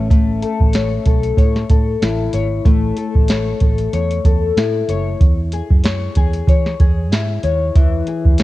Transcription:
Already playing: A1 C#4 B4
0.10 A3, kick, closed hi-hat
0.42 A4, closed hi-hat
0.60 A1, kick
0.73 C#5, snare, closed hi-hat
1.05 B1 A4, kick, closed hi-hat
1.23 closed hi-hat
1.37 A2 C#5, kick, closed hi-hat
1.56 snare
1.69 A2 A4, kick, closed hi-hat
2.02 A1 E4, snare, closed hi-hat
2.33 G#1 C#5, closed hi-hat
2.65 A1 A3, kick, closed hi-hat
2.97 A4, closed hi-hat
3.15 A1, kick
3.28 C#5, snare, closed hi-hat
3.60 A1 A4, kick, closed hi-hat
3.78 closed hi-hat
3.93 E2 C#5, closed hi-hat
4.11 closed hi-hat
4.25 E2 A4, kick, closed hi-hat
4.57 A2 E4, snare, closed hi-hat
4.88 F#1 C#5, closed hi-hat
5.21 E2, kick, closed hi-hat
5.52 G#4, closed hi-hat
5.70 F#2, kick
5.84 C#5, snare, closed hi-hat
6.15 E2 G#4, kick, closed hi-hat
6.33 closed hi-hat
6.48 E3 C#5, kick, closed hi-hat
6.66 snare
6.80 E2 G#4, kick, closed hi-hat
7.12 G#2 E4, snare, closed hi-hat
7.43 D#2 C#5, closed hi-hat
7.76 E2 E3, kick, closed hi-hat
8.07 G#4, closed hi-hat
8.25 E2, kick
8.38 C#5, snare, closed hi-hat

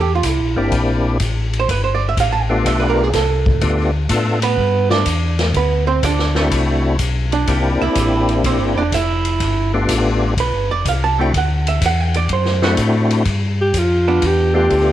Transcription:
Already playing: E2
0.01 G4
0.15 F4
0.23 C2 E4, kick, hi-hat pedal, ride
0.40 A#1
0.56 G1 A#3 C4 D4 E4 G4
0.72 A#1, kick, ride
1.20 A1, kick, hi-hat pedal, ride
1.53 ride
1.60 C5
1.68 G1 B4, kick, ride
1.84 C5
1.95 D5
2.09 E5
2.17 A1 F5, kick, hi-hat pedal, ride
2.33 A5
2.42 G5
2.50 A3 B3 D4 F4 G4
2.56 F5
2.65 B1 E5, kick, ride
2.80 B4
2.90 A#4
3.03 G#4
3.13 C2 A4, kick, snare, hi-hat pedal, ride
3.46 kick
3.61 D2 A3 B3 D4 F4 G4, kick, ride
4.09 A2 A3 B3 D4 F4 A4, kick, hi-hat pedal, ride
4.42 B3 B4, ride
4.57 G2, kick
4.90 D4 D5, snare
5.06 E2, kick, hi-hat pedal, ride
5.39 snare, ride
5.54 D2 B3 B4, kick, ride
5.87 C4 C5
6.02 D2 D4 D5, kick, hi-hat pedal, ride
6.19 snare
6.35 A3 C4 D4 E4 F#4, snare
6.51 C2, kick, ride
6.99 B1, kick, hi-hat pedal, ride
7.32 D4 D5, ride
7.47 C2 A#3 C4 D4 E4 G4, kick, ride
7.81 C2 E4 E5
7.95 A1, kick, hi-hat pedal, ride
8.29 ride
8.44 A#1 C4 C5, kick, ride
8.59 G1
8.76 E1 D4 D5
8.92 F1 E4 E5, kick, hi-hat pedal, ride
9.25 ride
9.40 G1, kick, ride
9.74 A3 B3 D4 F4 G4
9.89 A1, kick, hi-hat pedal, ride
10.37 B1 B4, kick, ride
10.54 G1
10.70 F1 D5
10.85 C2 F5, kick, hi-hat pedal, ride
11.04 A5
11.19 A3 C4 D4 E4 F#4 G5
11.33 D2, kick, ride
11.37 F#5
11.67 E5, ride
11.82 E2, kick, hi-hat pedal, ride
11.86 F#5
12.00 G5
12.14 D5, ride
12.29 F#2 C5, kick, ride
12.45 snare
12.62 A3 C4 D4 E4 F#4, snare
12.77 A2, kick, hi-hat pedal, ride
13.10 ride
13.25 G2, kick, ride
13.61 G4
13.73 F2, kick, hi-hat pedal, ride
13.78 F4
14.08 B3 D4
14.22 E2 G4, kick, ride
14.54 A3 B3 D4 F4 G4
14.70 D2, kick, hi-hat pedal, ride

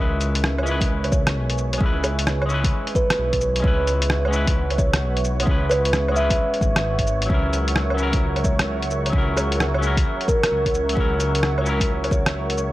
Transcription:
Already playing: C#2 G#3 C#4 E5 C#6
0.00 E4 B4 C#5 G#5
0.21 closed hi-hat, cabasa
0.35 closed hi-hat
0.44 cross-stick
0.58 low woodblock
0.63 G#3 C#4, cabasa
0.68 E4 B4
0.81 kick, closed hi-hat
0.90 C#2
1.04 closed hi-hat, low woodblock
1.12 C#5, kick, cabasa
1.27 cross-stick, closed hi-hat
1.36 B1
1.50 closed hi-hat
1.58 cabasa
1.73 closed hi-hat, low woodblock
1.78 C#2 G#3 C#4, kick
1.83 E4 B4
2.04 G#4, closed hi-hat, cabasa, low woodblock
2.19 closed hi-hat
2.27 cross-stick, cabasa
2.42 low woodblock
2.46 G#3 C#4, cabasa
2.51 E4 B4
2.64 kick, closed hi-hat
2.87 closed hi-hat
2.95 B4, kick, cabasa
3.10 cross-stick, closed hi-hat
3.18 B1
3.33 kick, closed hi-hat
3.41 cabasa
3.56 closed hi-hat
3.60 G#3 C#4
3.64 C#2 E4 B4 F#5, kick
3.87 closed hi-hat, cabasa
4.02 closed hi-hat
4.10 cross-stick
4.25 G#3, low woodblock
4.31 C#4 E4, cabasa
4.36 B4
4.47 kick, closed hi-hat
4.56 C#2
4.70 closed hi-hat, low woodblock
4.78 C#5, kick, cabasa
4.93 cross-stick, closed hi-hat
5.01 B1
5.17 closed hi-hat
5.24 cabasa
5.40 G#3, closed hi-hat, low woodblock
5.46 C#2 C#4 E4, kick
5.51 B4
5.70 B4, closed hi-hat, cabasa, low woodblock
5.85 closed hi-hat
5.93 cross-stick, cabasa
6.08 G#3, low woodblock
6.14 C#4 E4 E5, cabasa
6.20 B4
6.30 kick, closed hi-hat
6.54 closed hi-hat
6.61 G#1, kick, cabasa
6.76 cross-stick, closed hi-hat
6.99 kick, closed hi-hat
7.07 G#1, cabasa
7.22 closed hi-hat
7.26 C#2 F#3 C#4 A#4 F#5, kick
7.32 E4 A#4
7.53 closed hi-hat, cabasa
7.68 closed hi-hat
7.76 cross-stick
7.90 low woodblock
7.94 F#3 C#4, cabasa
8.00 E4 A#4
8.13 kick, closed hi-hat
8.21 C#2
8.36 closed hi-hat, low woodblock
8.44 C#5, kick, cabasa
8.59 cross-stick, closed hi-hat
8.67 C#2
8.82 closed hi-hat
8.91 cabasa
9.06 closed hi-hat, low woodblock
9.10 C#2 F#3 C#4, kick
9.16 E4 A#4
9.37 G#4, closed hi-hat, cabasa, low woodblock
9.52 closed hi-hat
9.60 cross-stick, cabasa
9.74 low woodblock
9.79 F#3 C#4
9.83 E4, cabasa
9.87 A#4
9.97 kick, closed hi-hat
10.21 closed hi-hat
10.28 A#4, kick, cabasa
10.44 cross-stick, closed hi-hat
10.51 C#2
10.66 kick, closed hi-hat
10.74 cabasa
10.89 F#3, closed hi-hat
10.95 C#2 C#4 E4, kick
11.00 A#4
11.20 closed hi-hat, cabasa
11.35 closed hi-hat
11.43 cross-stick
11.58 F#3, low woodblock
11.64 C#4 E4, cabasa
11.69 A#4
11.80 kick, closed hi-hat
11.88 C#2
12.04 closed hi-hat, low woodblock
12.11 C#5, kick, cabasa
12.26 cross-stick, closed hi-hat
12.34 C#2
12.50 closed hi-hat
12.58 cabasa

